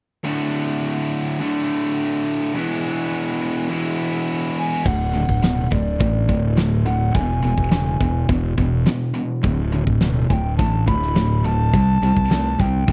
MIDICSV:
0, 0, Header, 1, 6, 480
1, 0, Start_track
1, 0, Tempo, 574163
1, 208, Time_signature, 4, 2, 24, 8
1, 10804, End_track
2, 0, Start_track
2, 0, Title_t, "Ocarina"
2, 0, Program_c, 0, 79
2, 3838, Note_on_c, 0, 80, 92
2, 4070, Note_on_c, 0, 78, 86
2, 4083, Note_off_c, 0, 80, 0
2, 4788, Note_on_c, 0, 74, 91
2, 4801, Note_off_c, 0, 78, 0
2, 5501, Note_off_c, 0, 74, 0
2, 5731, Note_on_c, 0, 78, 91
2, 5977, Note_on_c, 0, 80, 100
2, 5989, Note_off_c, 0, 78, 0
2, 6934, Note_off_c, 0, 80, 0
2, 8604, Note_on_c, 0, 80, 84
2, 8639, Note_on_c, 0, 79, 92
2, 8647, Note_off_c, 0, 80, 0
2, 8830, Note_off_c, 0, 79, 0
2, 8840, Note_on_c, 0, 81, 100
2, 9068, Note_off_c, 0, 81, 0
2, 9087, Note_on_c, 0, 83, 105
2, 9572, Note_on_c, 0, 81, 105
2, 9585, Note_off_c, 0, 83, 0
2, 10535, Note_on_c, 0, 79, 90
2, 10547, Note_off_c, 0, 81, 0
2, 10804, Note_off_c, 0, 79, 0
2, 10804, End_track
3, 0, Start_track
3, 0, Title_t, "Overdriven electric guitar"
3, 0, Program_c, 1, 29
3, 10765, Note_on_c, 1, 48, 74
3, 10767, Note_on_c, 1, 55, 83
3, 10804, Note_off_c, 1, 48, 0
3, 10804, Note_off_c, 1, 55, 0
3, 10804, End_track
4, 0, Start_track
4, 0, Title_t, "Distorted electric guitar"
4, 0, Program_c, 2, 30
4, 202, Note_on_c, 2, 38, 77
4, 204, Note_on_c, 2, 45, 76
4, 209, Note_on_c, 2, 50, 81
4, 212, Note_on_c, 2, 57, 79
4, 219, Note_on_c, 2, 66, 94
4, 1153, Note_off_c, 2, 38, 0
4, 1154, Note_off_c, 2, 45, 0
4, 1157, Note_off_c, 2, 50, 0
4, 1159, Note_off_c, 2, 57, 0
4, 1162, Note_off_c, 2, 66, 0
4, 1164, Note_on_c, 2, 38, 66
4, 1168, Note_on_c, 2, 45, 69
4, 1171, Note_on_c, 2, 50, 74
4, 1178, Note_on_c, 2, 57, 78
4, 1178, Note_on_c, 2, 66, 72
4, 2115, Note_off_c, 2, 38, 0
4, 2117, Note_off_c, 2, 45, 0
4, 2119, Note_off_c, 2, 50, 0
4, 2122, Note_off_c, 2, 57, 0
4, 2122, Note_off_c, 2, 66, 0
4, 2123, Note_on_c, 2, 40, 78
4, 2129, Note_on_c, 2, 47, 69
4, 2133, Note_on_c, 2, 52, 85
4, 2133, Note_on_c, 2, 56, 89
4, 2140, Note_on_c, 2, 59, 85
4, 2140, Note_on_c, 2, 64, 81
4, 3075, Note_off_c, 2, 40, 0
4, 3078, Note_off_c, 2, 47, 0
4, 3080, Note_off_c, 2, 52, 0
4, 3080, Note_off_c, 2, 56, 0
4, 3083, Note_off_c, 2, 64, 0
4, 3084, Note_off_c, 2, 59, 0
4, 3088, Note_on_c, 2, 40, 69
4, 3089, Note_on_c, 2, 47, 74
4, 3093, Note_on_c, 2, 52, 70
4, 3096, Note_on_c, 2, 56, 75
4, 3100, Note_on_c, 2, 59, 75
4, 3101, Note_on_c, 2, 64, 76
4, 4037, Note_off_c, 2, 40, 0
4, 4038, Note_off_c, 2, 47, 0
4, 4040, Note_off_c, 2, 52, 0
4, 4041, Note_off_c, 2, 56, 0
4, 4043, Note_off_c, 2, 59, 0
4, 4044, Note_off_c, 2, 64, 0
4, 4048, Note_on_c, 2, 38, 73
4, 4053, Note_on_c, 2, 45, 80
4, 4267, Note_off_c, 2, 38, 0
4, 4270, Note_off_c, 2, 45, 0
4, 4291, Note_on_c, 2, 38, 63
4, 4297, Note_on_c, 2, 45, 65
4, 4509, Note_off_c, 2, 38, 0
4, 4512, Note_off_c, 2, 45, 0
4, 4534, Note_on_c, 2, 38, 75
4, 4540, Note_on_c, 2, 47, 90
4, 4750, Note_off_c, 2, 38, 0
4, 4753, Note_off_c, 2, 47, 0
4, 4770, Note_on_c, 2, 38, 71
4, 4774, Note_on_c, 2, 45, 76
4, 4988, Note_off_c, 2, 38, 0
4, 4990, Note_off_c, 2, 45, 0
4, 5013, Note_on_c, 2, 38, 78
4, 5020, Note_on_c, 2, 45, 84
4, 5230, Note_off_c, 2, 38, 0
4, 5233, Note_off_c, 2, 45, 0
4, 5255, Note_on_c, 2, 38, 65
4, 5257, Note_on_c, 2, 45, 71
4, 5470, Note_off_c, 2, 38, 0
4, 5472, Note_off_c, 2, 45, 0
4, 5491, Note_on_c, 2, 38, 80
4, 5500, Note_on_c, 2, 45, 81
4, 5708, Note_off_c, 2, 38, 0
4, 5713, Note_off_c, 2, 45, 0
4, 5732, Note_on_c, 2, 38, 69
4, 5733, Note_on_c, 2, 45, 81
4, 5949, Note_off_c, 2, 38, 0
4, 5949, Note_off_c, 2, 45, 0
4, 5972, Note_on_c, 2, 40, 76
4, 5978, Note_on_c, 2, 47, 86
4, 6188, Note_off_c, 2, 40, 0
4, 6191, Note_off_c, 2, 47, 0
4, 6207, Note_on_c, 2, 40, 73
4, 6216, Note_on_c, 2, 47, 72
4, 6426, Note_off_c, 2, 40, 0
4, 6430, Note_off_c, 2, 47, 0
4, 6450, Note_on_c, 2, 40, 74
4, 6452, Note_on_c, 2, 49, 87
4, 6667, Note_off_c, 2, 40, 0
4, 6668, Note_off_c, 2, 49, 0
4, 6693, Note_on_c, 2, 40, 68
4, 6693, Note_on_c, 2, 47, 83
4, 6908, Note_off_c, 2, 40, 0
4, 6909, Note_off_c, 2, 47, 0
4, 6928, Note_on_c, 2, 40, 77
4, 6931, Note_on_c, 2, 47, 74
4, 7146, Note_off_c, 2, 40, 0
4, 7148, Note_off_c, 2, 47, 0
4, 7168, Note_on_c, 2, 40, 66
4, 7171, Note_on_c, 2, 47, 71
4, 7386, Note_off_c, 2, 40, 0
4, 7387, Note_off_c, 2, 47, 0
4, 7405, Note_on_c, 2, 40, 71
4, 7409, Note_on_c, 2, 47, 82
4, 7624, Note_off_c, 2, 40, 0
4, 7626, Note_off_c, 2, 47, 0
4, 7639, Note_on_c, 2, 40, 71
4, 7649, Note_on_c, 2, 47, 83
4, 7861, Note_off_c, 2, 40, 0
4, 7866, Note_off_c, 2, 47, 0
4, 7883, Note_on_c, 2, 38, 74
4, 7887, Note_on_c, 2, 45, 89
4, 8103, Note_off_c, 2, 38, 0
4, 8105, Note_off_c, 2, 45, 0
4, 8127, Note_on_c, 2, 38, 65
4, 8129, Note_on_c, 2, 45, 84
4, 8345, Note_off_c, 2, 38, 0
4, 8346, Note_off_c, 2, 45, 0
4, 8371, Note_on_c, 2, 38, 71
4, 8377, Note_on_c, 2, 47, 93
4, 8587, Note_off_c, 2, 38, 0
4, 8590, Note_off_c, 2, 47, 0
4, 8612, Note_on_c, 2, 38, 77
4, 8615, Note_on_c, 2, 45, 87
4, 8827, Note_off_c, 2, 38, 0
4, 8829, Note_off_c, 2, 45, 0
4, 8859, Note_on_c, 2, 45, 91
4, 8860, Note_on_c, 2, 38, 70
4, 9071, Note_off_c, 2, 38, 0
4, 9071, Note_off_c, 2, 45, 0
4, 9090, Note_on_c, 2, 38, 71
4, 9094, Note_on_c, 2, 45, 72
4, 9306, Note_off_c, 2, 38, 0
4, 9308, Note_off_c, 2, 45, 0
4, 9325, Note_on_c, 2, 38, 81
4, 9331, Note_on_c, 2, 45, 75
4, 9543, Note_off_c, 2, 38, 0
4, 9546, Note_off_c, 2, 45, 0
4, 9567, Note_on_c, 2, 38, 75
4, 9572, Note_on_c, 2, 45, 83
4, 9785, Note_off_c, 2, 38, 0
4, 9787, Note_off_c, 2, 45, 0
4, 9814, Note_on_c, 2, 48, 73
4, 9817, Note_on_c, 2, 55, 83
4, 10028, Note_off_c, 2, 48, 0
4, 10029, Note_off_c, 2, 55, 0
4, 10056, Note_on_c, 2, 48, 71
4, 10061, Note_on_c, 2, 55, 84
4, 10269, Note_off_c, 2, 48, 0
4, 10271, Note_off_c, 2, 55, 0
4, 10298, Note_on_c, 2, 57, 81
4, 10300, Note_on_c, 2, 48, 74
4, 10510, Note_off_c, 2, 57, 0
4, 10511, Note_off_c, 2, 48, 0
4, 10539, Note_on_c, 2, 48, 76
4, 10543, Note_on_c, 2, 55, 83
4, 10750, Note_off_c, 2, 48, 0
4, 10752, Note_off_c, 2, 55, 0
4, 10804, End_track
5, 0, Start_track
5, 0, Title_t, "Fingered electric bass"
5, 0, Program_c, 3, 33
5, 4060, Note_on_c, 3, 26, 95
5, 4399, Note_off_c, 3, 26, 0
5, 4422, Note_on_c, 3, 26, 81
5, 4760, Note_off_c, 3, 26, 0
5, 4781, Note_on_c, 3, 26, 81
5, 5005, Note_off_c, 3, 26, 0
5, 5022, Note_on_c, 3, 33, 99
5, 5246, Note_off_c, 3, 33, 0
5, 5260, Note_on_c, 3, 26, 74
5, 5943, Note_off_c, 3, 26, 0
5, 5977, Note_on_c, 3, 28, 99
5, 6203, Note_off_c, 3, 28, 0
5, 6217, Note_on_c, 3, 28, 81
5, 6329, Note_off_c, 3, 28, 0
5, 6336, Note_on_c, 3, 28, 72
5, 6676, Note_off_c, 3, 28, 0
5, 6691, Note_on_c, 3, 28, 79
5, 6919, Note_off_c, 3, 28, 0
5, 6932, Note_on_c, 3, 28, 101
5, 7160, Note_off_c, 3, 28, 0
5, 7172, Note_on_c, 3, 28, 80
5, 7399, Note_off_c, 3, 28, 0
5, 7892, Note_on_c, 3, 26, 96
5, 8233, Note_off_c, 3, 26, 0
5, 8253, Note_on_c, 3, 26, 80
5, 8593, Note_off_c, 3, 26, 0
5, 8612, Note_on_c, 3, 26, 75
5, 8839, Note_off_c, 3, 26, 0
5, 8855, Note_on_c, 3, 33, 108
5, 9081, Note_off_c, 3, 33, 0
5, 9092, Note_on_c, 3, 26, 80
5, 9777, Note_off_c, 3, 26, 0
5, 9811, Note_on_c, 3, 36, 91
5, 10038, Note_off_c, 3, 36, 0
5, 10046, Note_on_c, 3, 36, 84
5, 10161, Note_off_c, 3, 36, 0
5, 10172, Note_on_c, 3, 36, 76
5, 10513, Note_off_c, 3, 36, 0
5, 10532, Note_on_c, 3, 36, 76
5, 10759, Note_off_c, 3, 36, 0
5, 10770, Note_on_c, 3, 36, 95
5, 10804, Note_off_c, 3, 36, 0
5, 10804, End_track
6, 0, Start_track
6, 0, Title_t, "Drums"
6, 4061, Note_on_c, 9, 36, 89
6, 4062, Note_on_c, 9, 49, 92
6, 4144, Note_off_c, 9, 36, 0
6, 4146, Note_off_c, 9, 49, 0
6, 4421, Note_on_c, 9, 36, 60
6, 4505, Note_off_c, 9, 36, 0
6, 4545, Note_on_c, 9, 38, 100
6, 4545, Note_on_c, 9, 46, 48
6, 4629, Note_off_c, 9, 38, 0
6, 4629, Note_off_c, 9, 46, 0
6, 4780, Note_on_c, 9, 36, 81
6, 4864, Note_off_c, 9, 36, 0
6, 5020, Note_on_c, 9, 36, 101
6, 5023, Note_on_c, 9, 46, 46
6, 5103, Note_off_c, 9, 36, 0
6, 5107, Note_off_c, 9, 46, 0
6, 5258, Note_on_c, 9, 36, 75
6, 5342, Note_off_c, 9, 36, 0
6, 5496, Note_on_c, 9, 38, 95
6, 5496, Note_on_c, 9, 46, 50
6, 5580, Note_off_c, 9, 38, 0
6, 5580, Note_off_c, 9, 46, 0
6, 5976, Note_on_c, 9, 36, 99
6, 5979, Note_on_c, 9, 46, 48
6, 6059, Note_off_c, 9, 36, 0
6, 6063, Note_off_c, 9, 46, 0
6, 6333, Note_on_c, 9, 36, 64
6, 6417, Note_off_c, 9, 36, 0
6, 6450, Note_on_c, 9, 38, 104
6, 6450, Note_on_c, 9, 46, 42
6, 6534, Note_off_c, 9, 38, 0
6, 6534, Note_off_c, 9, 46, 0
6, 6692, Note_on_c, 9, 36, 80
6, 6776, Note_off_c, 9, 36, 0
6, 6927, Note_on_c, 9, 46, 42
6, 6931, Note_on_c, 9, 36, 102
6, 7010, Note_off_c, 9, 46, 0
6, 7014, Note_off_c, 9, 36, 0
6, 7171, Note_on_c, 9, 36, 73
6, 7254, Note_off_c, 9, 36, 0
6, 7412, Note_on_c, 9, 38, 103
6, 7412, Note_on_c, 9, 46, 51
6, 7495, Note_off_c, 9, 38, 0
6, 7495, Note_off_c, 9, 46, 0
6, 7889, Note_on_c, 9, 46, 47
6, 7891, Note_on_c, 9, 36, 98
6, 7972, Note_off_c, 9, 46, 0
6, 7975, Note_off_c, 9, 36, 0
6, 8251, Note_on_c, 9, 36, 71
6, 8335, Note_off_c, 9, 36, 0
6, 8367, Note_on_c, 9, 38, 90
6, 8367, Note_on_c, 9, 46, 51
6, 8451, Note_off_c, 9, 38, 0
6, 8451, Note_off_c, 9, 46, 0
6, 8612, Note_on_c, 9, 36, 81
6, 8695, Note_off_c, 9, 36, 0
6, 8853, Note_on_c, 9, 36, 102
6, 8855, Note_on_c, 9, 46, 46
6, 8937, Note_off_c, 9, 36, 0
6, 8938, Note_off_c, 9, 46, 0
6, 9093, Note_on_c, 9, 36, 74
6, 9176, Note_off_c, 9, 36, 0
6, 9214, Note_on_c, 9, 38, 31
6, 9297, Note_off_c, 9, 38, 0
6, 9331, Note_on_c, 9, 38, 107
6, 9331, Note_on_c, 9, 46, 55
6, 9415, Note_off_c, 9, 38, 0
6, 9415, Note_off_c, 9, 46, 0
6, 9811, Note_on_c, 9, 36, 98
6, 9814, Note_on_c, 9, 46, 46
6, 9895, Note_off_c, 9, 36, 0
6, 9897, Note_off_c, 9, 46, 0
6, 10170, Note_on_c, 9, 36, 65
6, 10254, Note_off_c, 9, 36, 0
6, 10291, Note_on_c, 9, 38, 101
6, 10291, Note_on_c, 9, 46, 48
6, 10375, Note_off_c, 9, 38, 0
6, 10375, Note_off_c, 9, 46, 0
6, 10530, Note_on_c, 9, 36, 84
6, 10613, Note_off_c, 9, 36, 0
6, 10766, Note_on_c, 9, 46, 43
6, 10769, Note_on_c, 9, 36, 105
6, 10804, Note_off_c, 9, 36, 0
6, 10804, Note_off_c, 9, 46, 0
6, 10804, End_track
0, 0, End_of_file